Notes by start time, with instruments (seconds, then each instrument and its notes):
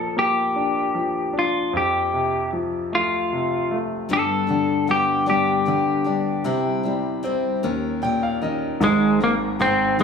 Already playing: grand piano A#2 F3, clean electric guitar A4
0.17 grand piano A#3, clean electric guitar G4
0.56 grand piano D4
0.95 grand piano F3
1.33 grand piano D4
1.39 clean electric guitar F4
1.73 grand piano F2, clean electric guitar G4
2.13 grand piano C3
2.53 grand piano F3
2.93 grand piano A3, clean electric guitar F4
3.33 grand piano C3
3.71 grand piano A3
4.09 steel-string acoustic guitar G2 D3 G3 B3 D4 G4, grand piano G2
4.13 clean electric guitar A4
4.47 grand piano D3, steel-string acoustic guitar G3 B3 D4 G4
4.87 steel-string acoustic guitar G3 B3 D4 G4, grand piano B3, clean electric guitar G4
5.26 steel-string acoustic guitar G2 D3 G3 B3 D4 G4, grand piano D4, clean electric guitar G4
5.65 grand piano D3, steel-string acoustic guitar G3 B3 D4 G4
6.04 steel-string acoustic guitar G3 B3 D4 G4, grand piano D4
6.44 steel-string acoustic guitar C3 G3 C4 E4 G4, grand piano C3
6.83 grand piano G3, steel-string acoustic guitar C4 E4 G4
7.23 steel-string acoustic guitar G3 C4 E4 G4, grand piano C4
7.63 grand piano D#2, steel-string acoustic guitar D#3 A#3 C#4 G4 A#4
8.02 grand piano A#2 G5, steel-string acoustic guitar A#3 C#4 G4 A#4
8.23 grand piano F5
8.42 grand piano D#3 D#5, steel-string acoustic guitar C#4 G4 A#4
8.80 grand piano G#1 G#2, steel-string acoustic guitar G#2 D#3 G#3 C4 D#4 G#4, clean electric guitar G#3
9.20 grand piano D#3, steel-string acoustic guitar G#3 C4 D#4 G#4, clean electric guitar A#3
9.59 grand piano G#2, steel-string acoustic guitar G#3 C4 D#4 G#4, clean electric guitar C4
9.98 steel-string acoustic guitar G#2 D#3 G#3 C4 D#4 G#4, grand piano D#3